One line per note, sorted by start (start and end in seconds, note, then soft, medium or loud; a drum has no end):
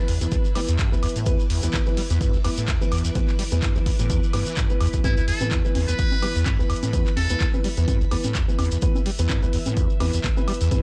0.00 10.82 E3 medium
0.00 10.82 E4 medium
0.00 10.82 B4 medium
0.00 1.25 B5 loud
0.08 0.19 E2 medium
0.08 open hi-hat loud
0.21 0.27 E2 medium
0.21 0.42 E3 medium
0.21 0.42 B3 medium
0.21 0.42 B4 medium
0.21 closed hi-hat medium
0.21 shekere medium
0.32 0.36 E2 loud
0.32 kick loud
0.32 closed hi-hat medium
0.32 shekere medium
0.45 shekere soft
0.55 0.70 E3 loud
0.55 0.60 G3 loud
0.55 0.70 B3 medium
0.55 0.70 B4 loud
0.55 open hi-hat loud
0.55 high woodblock medium
0.68 0.77 E2 loud
0.68 closed hi-hat medium
0.68 shekere medium
0.79 0.90 G2 medium
0.79 kick loud
0.79 clap loud
0.79 closed hi-hat medium
0.79 shekere medium
0.92 0.96 D2 medium
0.92 1.24 E3 medium
0.92 1.24 B3 medium
0.92 1.24 B4 medium
0.92 shekere soft
1.03 1.07 E2 medium
1.03 open hi-hat loud
1.03 high woodblock medium
1.09 closed hi-hat medium
1.16 1.28 A2 medium
1.16 closed hi-hat medium
1.16 shekere medium
1.26 1.37 E2 medium
1.26 1.41 E3 medium
1.26 1.41 B3 medium
1.26 1.41 B4 loud
1.26 5.03 D6 loud
1.26 kick loud
1.26 closed hi-hat medium
1.26 shekere medium
1.40 shekere soft
1.50 1.61 E2 medium
1.50 open hi-hat loud
1.63 1.69 E2 medium
1.63 1.75 E3 loud
1.63 1.75 B3 loud
1.63 1.75 B4 loud
1.63 closed hi-hat medium
1.63 shekere medium
1.74 1.78 E2 loud
1.74 kick loud
1.74 clap loud
1.74 closed hi-hat soft
1.74 shekere medium
1.86 1.99 E3 medium
1.86 1.99 B3 medium
1.86 1.99 B4 medium
1.86 shekere soft
1.97 2.01 G3 loud
1.97 open hi-hat loud
2.10 2.19 E2 loud
2.10 2.31 E3 medium
2.10 2.31 B3 medium
2.10 2.31 B4 medium
2.10 closed hi-hat soft
2.10 shekere medium
2.21 2.32 G2 medium
2.21 kick loud
2.21 closed hi-hat medium
2.21 shekere medium
2.33 2.37 D2 medium
2.33 shekere soft
2.44 2.49 E2 medium
2.44 2.59 E3 loud
2.44 2.59 B3 medium
2.44 2.59 B4 loud
2.44 open hi-hat loud
2.44 high woodblock medium
2.57 2.70 A2 medium
2.57 closed hi-hat soft
2.57 shekere medium
2.68 2.79 E2 medium
2.68 kick loud
2.68 clap loud
2.68 closed hi-hat medium
2.68 shekere medium
2.81 3.13 E3 medium
2.81 3.13 B3 medium
2.81 3.13 B4 medium
2.81 shekere soft
2.92 3.02 E2 medium
2.92 open hi-hat loud
2.92 high woodblock medium
2.98 closed hi-hat medium
3.04 3.11 E2 medium
3.04 closed hi-hat soft
3.04 shekere medium
3.15 3.20 E2 loud
3.15 3.30 E3 medium
3.15 3.30 B3 medium
3.15 3.30 B4 loud
3.15 kick loud
3.15 closed hi-hat medium
3.15 shekere medium
3.28 clap soft
3.28 shekere soft
3.39 3.43 G3 loud
3.39 open hi-hat loud
3.52 3.61 E2 loud
3.52 3.64 E3 loud
3.52 3.64 B3 medium
3.52 3.64 B4 loud
3.52 closed hi-hat medium
3.52 shekere medium
3.62 3.73 G2 medium
3.62 kick loud
3.62 clap loud
3.62 closed hi-hat medium
3.62 shekere medium
3.75 3.79 D2 medium
3.75 3.88 E3 medium
3.75 3.88 B3 medium
3.75 3.88 B4 medium
3.75 shekere soft
3.86 3.90 E2 medium
3.86 kick medium
3.86 open hi-hat loud
3.99 4.11 A2 medium
3.99 4.20 E3 medium
3.99 4.20 B3 medium
3.99 4.20 B4 medium
3.99 closed hi-hat soft
3.99 shekere medium
4.10 4.20 E2 medium
4.10 kick loud
4.10 closed hi-hat medium
4.10 shekere medium
4.23 shekere soft
4.33 4.44 G2 medium
4.33 4.48 E3 medium
4.33 4.48 B3 medium
4.33 4.48 B4 loud
4.33 open hi-hat loud
4.33 high woodblock medium
4.46 4.58 E3 loud
4.46 closed hi-hat soft
4.46 shekere medium
4.57 4.68 F#2 medium
4.57 kick loud
4.57 clap loud
4.57 closed hi-hat medium
4.57 shekere medium
4.70 5.02 E3 medium
4.70 5.02 B3 medium
4.70 5.02 B4 medium
4.70 shekere soft
4.81 4.88 E2 loud
4.81 open hi-hat loud
4.81 high woodblock medium
4.87 closed hi-hat medium
4.93 4.99 D2 medium
4.93 kick medium
4.93 closed hi-hat medium
4.93 shekere medium
5.04 5.15 G2 medium
5.04 5.19 E3 medium
5.04 5.19 B3 medium
5.04 5.13 E4 medium
5.04 5.19 B4 loud
5.04 8.81 B5 loud
5.04 kick loud
5.04 closed hi-hat medium
5.04 high conga medium
5.04 shekere medium
5.17 5.21 D2 medium
5.17 5.24 E4 medium
5.17 shekere soft
5.28 5.32 E2 medium
5.28 5.48 A4 medium
5.28 open hi-hat loud
5.41 5.53 A2 medium
5.41 5.53 E3 loud
5.41 5.53 B3 medium
5.41 5.53 B4 loud
5.41 closed hi-hat medium
5.41 high conga medium
5.41 shekere medium
5.51 5.62 E2 medium
5.51 kick loud
5.51 clap loud
5.51 closed hi-hat medium
5.51 shekere medium
5.65 5.77 E3 medium
5.65 5.77 B3 medium
5.65 5.77 B4 medium
5.65 shekere soft
5.75 5.86 E2 medium
5.75 open hi-hat loud
5.75 high conga medium
5.88 5.94 E2 medium
5.88 6.09 E3 medium
5.88 6.09 B3 medium
5.88 6.54 B4 loud
5.88 6.09 B4 medium
5.88 closed hi-hat soft
5.88 shekere medium
5.99 6.03 E2 loud
5.99 kick loud
5.99 closed hi-hat medium
5.99 shekere medium
6.12 high conga medium
6.12 shekere soft
6.22 6.37 E3 loud
6.22 6.27 G3 loud
6.22 6.37 B3 medium
6.22 6.37 B4 loud
6.22 open hi-hat loud
6.22 high woodblock medium
6.35 6.44 E2 loud
6.35 closed hi-hat soft
6.35 shekere medium
6.45 6.57 G2 medium
6.45 kick loud
6.45 clap loud
6.45 closed hi-hat medium
6.45 high conga medium
6.45 shekere medium
6.59 6.63 D2 medium
6.59 6.91 E3 medium
6.59 6.91 B3 medium
6.59 6.91 B4 medium
6.59 shekere soft
6.70 6.74 E2 medium
6.70 open hi-hat loud
6.70 high woodblock medium
6.76 closed hi-hat medium
6.83 6.95 A2 medium
6.83 closed hi-hat medium
6.83 high conga medium
6.83 shekere medium
6.93 7.04 E2 medium
6.93 7.08 E3 medium
6.93 7.08 B3 medium
6.93 7.08 B4 loud
6.93 kick loud
6.93 closed hi-hat medium
6.93 shekere medium
7.06 clap soft
7.06 shekere soft
7.17 7.28 E2 medium
7.17 7.54 A4 loud
7.17 open hi-hat loud
7.17 high conga medium
7.30 7.36 E2 medium
7.30 7.42 E3 loud
7.30 7.42 B3 loud
7.30 7.42 B4 loud
7.30 closed hi-hat medium
7.30 shekere medium
7.41 7.45 E2 loud
7.41 kick loud
7.41 clap loud
7.41 closed hi-hat medium
7.41 shekere medium
7.54 7.66 E3 medium
7.54 7.66 B3 medium
7.54 7.66 B4 medium
7.54 high conga medium
7.54 shekere soft
7.64 7.68 G3 loud
7.64 open hi-hat loud
7.77 7.86 E2 loud
7.77 7.98 E3 medium
7.77 7.98 B3 medium
7.77 7.98 B4 medium
7.77 closed hi-hat medium
7.77 shekere medium
7.88 7.99 G2 medium
7.88 kick loud
7.88 closed hi-hat medium
7.88 high conga medium
7.88 shekere medium
8.01 8.04 D2 medium
8.01 shekere soft
8.11 8.16 E2 medium
8.11 8.26 E3 loud
8.11 8.26 B3 medium
8.11 8.26 B4 loud
8.11 open hi-hat loud
8.11 high woodblock medium
8.24 8.37 A2 medium
8.24 closed hi-hat medium
8.24 high conga medium
8.24 shekere medium
8.35 8.46 E2 medium
8.35 kick loud
8.35 clap loud
8.35 closed hi-hat medium
8.35 shekere medium
8.48 8.80 E3 medium
8.48 8.80 B3 medium
8.48 8.80 B4 medium
8.48 shekere soft
8.59 8.69 E2 medium
8.59 open hi-hat loud
8.59 high conga medium
8.59 high woodblock medium
8.65 closed hi-hat medium
8.71 8.77 E2 medium
8.71 closed hi-hat medium
8.71 shekere medium
8.82 8.87 E2 loud
8.82 8.97 E3 medium
8.82 8.97 B3 medium
8.82 8.97 B4 loud
8.82 10.82 E5 loud
8.82 kick loud
8.82 closed hi-hat medium
8.82 shekere medium
8.95 high conga medium
8.95 shekere soft
9.06 9.10 G3 loud
9.06 open hi-hat loud
9.19 9.28 E2 loud
9.19 9.31 E3 loud
9.19 9.31 B3 medium
9.19 9.31 B4 loud
9.19 closed hi-hat medium
9.19 shekere medium
9.29 9.40 G2 medium
9.29 kick loud
9.29 clap loud
9.29 closed hi-hat medium
9.29 high conga medium
9.29 shekere medium
9.43 9.46 D2 medium
9.43 9.55 E3 medium
9.43 9.55 B3 medium
9.43 9.55 B4 medium
9.43 shekere soft
9.53 9.57 E2 medium
9.53 open hi-hat loud
9.66 9.78 A2 medium
9.66 9.87 E3 medium
9.66 9.87 B3 medium
9.66 9.87 B4 medium
9.66 closed hi-hat medium
9.66 high conga medium
9.66 shekere medium
9.77 9.88 E2 medium
9.77 kick loud
9.77 closed hi-hat medium
9.77 shekere medium
9.90 shekere soft
10.00 10.11 E2 medium
10.00 10.15 E3 medium
10.00 10.15 B3 medium
10.00 10.15 B4 loud
10.00 open hi-hat loud
10.00 high conga medium
10.00 high woodblock medium
10.13 10.19 E2 medium
10.13 closed hi-hat medium
10.13 shekere medium
10.24 10.28 E2 loud
10.24 kick loud
10.24 clap loud
10.24 closed hi-hat medium
10.24 shekere medium
10.37 10.69 E3 medium
10.37 10.69 B3 medium
10.37 10.69 B4 loud
10.37 high conga medium
10.37 shekere soft
10.48 10.52 G3 loud
10.48 open hi-hat loud
10.48 high woodblock medium
10.54 closed hi-hat medium
10.61 10.69 E2 loud
10.61 closed hi-hat medium
10.61 shekere medium
10.71 10.82 G2 medium
10.71 10.82 E3 loud
10.71 10.82 B3 medium
10.71 10.82 B4 loud
10.71 kick loud
10.71 closed hi-hat medium
10.71 high conga medium
10.71 shekere medium